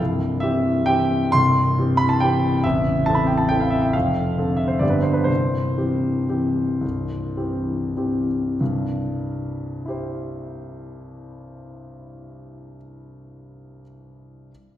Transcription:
0.00 0.41 C1 medium
0.00 0.41 C2 medium
0.40 0.83 E3 soft
0.40 0.83 C4 soft
0.40 0.83 G4 soft
0.40 0.86 E5 medium
0.86 1.29 E3 soft
0.86 1.29 C4 soft
0.86 1.30 G4 medium
0.86 1.32 G5 medium
1.32 1.76 C1 soft
1.32 1.76 C2 medium
1.32 1.98 C6 medium
1.79 2.18 E3 soft
1.79 2.18 C4 soft
1.79 2.18 G4 soft
1.97 2.09 B5 medium
2.09 2.20 A5 medium
2.20 2.61 E3 soft
2.20 2.61 C4 soft
2.20 2.61 G4 soft
2.20 2.64 G5 medium
2.64 3.06 A0 soft
2.64 3.06 A1 medium
2.64 3.06 E5 medium
3.06 3.47 E3 soft
3.06 3.48 C4 soft
3.06 3.48 A4 soft
3.06 3.17 A5 medium
3.15 3.27 B5 medium
3.27 3.39 G5 medium
3.38 3.50 A5 medium
3.49 3.90 E3 soft
3.49 3.90 C4 soft
3.49 3.91 A4 soft
3.49 3.61 G5 medium
3.60 3.72 F5 medium
3.70 3.82 E5 medium
3.82 3.93 G5 medium
3.93 4.37 F1 soft
3.93 4.37 F2 soft
3.93 4.59 F5 medium
4.38 4.79 D3 soft
4.38 4.79 C4 soft
4.38 4.79 A4 soft
4.57 4.69 E5 medium
4.68 4.81 C5 medium
4.79 5.27 G1 soft
4.79 5.27 G2 soft
4.79 5.25 D3 soft
4.79 5.25 B3 soft
4.79 5.25 G4 soft
4.79 4.92 D5 medium
4.90 5.03 B4 soft
5.02 5.16 C5 medium
5.13 5.27 B4 medium
5.24 5.76 C1 soft
5.24 5.76 C2 soft
5.24 8.26 C5 medium
5.77 6.25 E3 soft
5.77 6.25 C4 soft
5.77 6.26 G4 soft
6.29 6.78 E3 soft
6.29 6.78 C4 soft
6.29 6.78 G4 soft
6.81 7.35 C1 soft
6.81 7.35 C2 soft
7.37 7.93 E3 soft
7.37 7.93 C4 soft
7.37 7.93 G4 soft
7.97 8.55 E3 soft
7.97 8.55 C4 soft
7.97 8.56 G4 soft
8.60 12.76 C2 soft
8.60 12.77 G2 soft
9.86 13.80 E4 soft
9.86 13.82 G4 soft
9.86 13.82 C5 soft

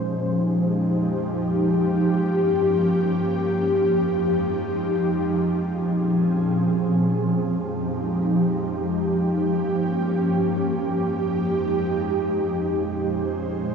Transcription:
0.00 1.71 F2 medium
0.00 3.49 F3 medium
0.00 1.71 G#3 medium
0.00 1.71 D#4 medium
0.00 5.29 G4 medium
1.73 3.51 G2 medium
1.73 3.51 A#3 medium
1.73 3.51 C#4 medium
3.53 5.32 F2 medium
3.53 13.75 F3 medium
3.53 5.32 G#3 medium
3.53 5.32 D#4 medium
5.33 7.12 A#2 medium
5.33 7.12 C4 medium
5.33 7.12 C#4 medium
5.33 7.12 G#4 medium
7.14 8.93 F2 medium
7.14 8.92 G#3 medium
7.14 8.93 D#4 medium
7.14 8.92 G4 medium
8.94 10.73 G2 medium
8.94 10.73 A#3 medium
8.94 10.73 C#4 medium
8.94 10.73 G4 medium
10.75 12.53 F2 medium
10.75 12.53 G#3 medium
10.75 12.53 D#4 medium
10.75 12.53 G4 medium
12.55 13.75 A#2 medium
12.55 13.75 G#3 medium
12.55 13.75 C#4 medium
12.55 13.75 C5 medium

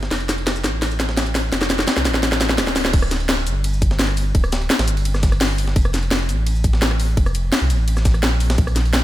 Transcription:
0.03 snare soft
0.11 0.66 F1 loud
0.11 snare medium
0.11 closed hi-hat medium
0.11 ride medium
0.20 ride soft
0.29 snare medium
0.29 closed hi-hat medium
0.29 ride medium
0.29 shaker medium
0.38 ride soft
0.47 snare loud
0.47 snare medium
0.47 closed hi-hat medium
0.47 ride medium
0.56 shaker soft
0.64 1.51 A1 loud
0.64 snare medium
0.64 closed hi-hat medium
0.64 ride medium
0.64 shaker medium
0.82 snare medium
0.82 closed hi-hat medium
0.82 ride medium
0.91 shaker soft
1.00 snare medium
1.00 closed hi-hat medium
1.00 ride medium
1.00 shaker medium
1.09 snare medium
1.17 snare medium
1.17 snare loud
1.17 closed hi-hat medium
1.17 ride medium
1.26 ride soft
1.26 shaker soft
1.35 snare medium
1.35 open hi-hat medium
1.35 ride medium
1.35 shaker medium
1.53 1.86 F1 loud
1.53 snare medium
1.53 closed hi-hat medium
1.53 ride medium
1.62 snare medium
1.62 ride soft
1.62 shaker soft
1.70 snare loud
1.70 closed hi-hat medium
1.70 ride medium
1.70 shaker medium
1.79 snare medium
1.88 snare loud
1.88 closed hi-hat medium
1.88 ride medium
1.97 2.07 C2 loud
1.97 snare medium
1.97 ride soft
1.97 shaker soft
2.05 2.60 A1 loud
2.05 snare loud
2.05 closed hi-hat medium
2.05 ride medium
2.05 shaker medium
2.14 snare medium
2.23 snare loud
2.23 closed hi-hat medium
2.23 ride medium
2.32 snare soft
2.32 snare medium
2.32 shaker soft
2.41 snare medium
2.41 snare loud
2.41 closed hi-hat medium
2.41 ride medium
2.41 shaker medium
2.50 snare medium
2.50 ride soft
2.58 2.92 D1 loud
2.58 snare loud
2.58 closed hi-hat medium
2.58 open hi-hat medium
2.67 snare medium
2.67 ride soft
2.67 shaker soft
2.76 snare loud
2.76 open hi-hat medium
2.76 ride medium
2.76 shaker medium
2.85 snare loud
2.85 snare medium
2.93 3.48 D1 loud
2.93 kick loud
2.93 closed hi-hat medium
2.93 ride medium
2.93 crash loud
3.02 cross-stick medium
3.02 ride soft
3.11 snare soft
3.11 closed hi-hat loud
3.11 ride medium
3.11 shaker medium
3.20 ride soft
3.29 snare loud
3.29 closed hi-hat medium
3.29 ride medium
3.47 4.33 G1 loud
3.47 closed hi-hat loud
3.47 ride medium
3.47 shaker medium
3.64 closed hi-hat medium
3.64 ride medium
3.73 shaker soft
3.82 kick loud
3.82 closed hi-hat loud
3.82 ride medium
3.82 shaker medium
3.91 snare medium
3.99 snare loud
3.99 closed hi-hat medium
3.99 ride medium
4.08 cross-stick soft
4.08 ride soft
4.17 open hi-hat medium
4.17 ride medium
4.17 shaker medium
4.35 4.69 D1 loud
4.35 kick loud
4.35 closed hi-hat medium
4.35 ride medium
4.44 cross-stick medium
4.44 ride soft
4.52 snare loud
4.52 closed hi-hat medium
4.52 ride medium
4.52 shaker medium
4.62 ride soft
4.70 snare loud
4.70 closed hi-hat medium
4.70 ride medium
4.79 4.89 A1 loud
4.79 snare loud
4.79 ride medium
4.88 5.75 G1 loud
4.88 closed hi-hat medium
4.88 ride soft
4.88 shaker medium
4.97 ride medium
5.05 closed hi-hat medium
5.05 ride medium
5.14 cross-stick soft
5.14 snare soft
5.14 shaker soft
5.23 kick loud
5.23 snare medium
5.23 closed hi-hat medium
5.23 ride medium
5.23 shaker medium
5.32 cross-stick soft
5.32 ride soft
5.41 snare loud
5.41 closed hi-hat medium
5.41 open hi-hat medium
5.50 ride soft
5.58 open hi-hat medium
5.58 ride medium
5.58 shaker medium
5.67 snare medium
5.76 6.31 F1 loud
5.76 kick loud
5.76 closed hi-hat medium
5.76 ride medium
5.85 cross-stick medium
5.85 ride soft
5.94 snare soft
5.94 closed hi-hat medium
5.94 ride medium
5.94 shaker medium
6.03 ride soft
6.11 snare loud
6.11 closed hi-hat medium
6.11 ride medium
6.29 7.16 A1 medium
6.29 closed hi-hat medium
6.29 ride medium
6.29 shaker medium
6.46 closed hi-hat medium
6.46 ride medium
6.56 shaker soft
6.64 kick loud
6.64 closed hi-hat medium
6.64 ride medium
6.64 shaker medium
6.73 snare medium
6.82 snare loud
6.82 closed hi-hat medium
6.82 ride medium
6.91 cross-stick soft
6.91 ride soft
7.00 open hi-hat medium
7.00 ride medium
7.00 shaker medium
7.17 7.51 F1 loud
7.17 kick loud
7.17 closed hi-hat medium
7.17 ride medium
7.26 cross-stick medium
7.26 ride soft
7.26 shaker soft
7.35 closed hi-hat medium
7.35 ride medium
7.35 shaker medium
7.52 snare loud
7.52 closed hi-hat medium
7.52 ride medium
7.62 7.72 C2 loud
7.62 ride soft
7.70 8.24 A1 loud
7.70 closed hi-hat medium
7.70 ride medium
7.70 shaker medium
7.88 closed hi-hat medium
7.88 ride loud
7.97 cross-stick soft
7.97 snare soft
7.97 shaker soft
8.05 kick loud
8.05 snare medium
8.05 closed hi-hat medium
8.05 ride medium
8.05 shaker medium
8.14 cross-stick soft
8.14 ride soft
8.23 8.57 A#1 loud
8.23 snare loud
8.23 closed hi-hat medium
8.23 ride medium
8.40 open hi-hat medium
8.40 ride medium
8.40 shaker medium
8.50 snare loud
8.50 ride medium
8.58 9.04 A#1 loud
8.58 kick loud
8.58 closed hi-hat medium
8.58 ride medium
8.67 cross-stick medium
8.67 ride soft
8.76 snare soft
8.76 closed hi-hat medium
8.76 ride medium
8.76 shaker medium
8.86 ride soft
8.93 snare loud
8.93 closed hi-hat medium
8.93 ride medium

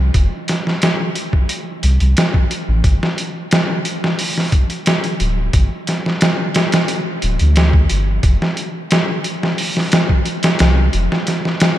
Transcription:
0.00 0.11 C2 medium
0.14 0.30 F1 loud
0.14 kick loud
0.14 closed hi-hat medium
0.48 snare medium
0.48 closed hi-hat medium
0.67 snare soft
0.82 snare loud
0.82 closed hi-hat medium
1.15 closed hi-hat medium
1.33 kick medium
1.49 closed hi-hat medium
1.83 1.99 C2 medium
1.83 closed hi-hat medium
2.00 2.15 C2 loud
2.00 closed hi-hat soft
2.17 snare loud
2.17 closed hi-hat medium
2.34 kick loud
2.51 closed hi-hat medium
2.68 2.82 A1 medium
2.84 3.00 G1 loud
2.84 kick loud
2.84 closed hi-hat medium
3.03 snare medium
3.18 closed hi-hat medium
3.51 snare loud
3.51 closed hi-hat medium
3.85 closed hi-hat medium
4.04 snare medium
4.19 open hi-hat medium
4.38 snare soft
4.52 kick loud
4.52 closed hi-hat medium
4.70 closed hi-hat soft
4.86 snare loud
4.86 closed hi-hat medium
5.04 closed hi-hat soft
5.20 5.50 D1 medium
5.20 closed hi-hat medium
5.53 5.69 G1 loud
5.53 kick loud
5.53 closed hi-hat medium
5.87 snare soft
5.87 closed hi-hat medium
6.06 snare soft
6.21 snare loud
6.21 closed hi-hat medium
6.55 snare loud
6.55 closed hi-hat medium
6.72 snare loud
6.72 closed hi-hat medium
6.88 closed hi-hat medium
7.22 7.38 D1 medium
7.22 closed hi-hat medium
7.39 7.87 D2 loud
7.39 closed hi-hat soft
7.56 snare loud
7.56 closed hi-hat medium
7.73 kick loud
7.89 8.20 G1 medium
7.89 closed hi-hat medium
8.23 8.39 F1 loud
8.23 kick loud
8.23 closed hi-hat medium
8.42 snare medium
8.57 closed hi-hat medium
8.91 snare loud
8.91 closed hi-hat medium
9.24 closed hi-hat medium
9.43 snare medium
9.58 open hi-hat medium
9.77 snare soft
9.92 snare loud
9.92 closed hi-hat medium
10.09 kick medium
10.25 closed hi-hat medium
10.43 snare loud
10.43 closed hi-hat medium
10.59 10.90 C2 medium
10.59 snare loud
10.59 closed hi-hat medium
10.93 11.09 F1 loud
10.93 closed hi-hat medium
11.12 snare soft
11.27 snare soft
11.27 closed hi-hat medium
11.45 snare soft
11.60 snare loud
11.60 closed hi-hat medium

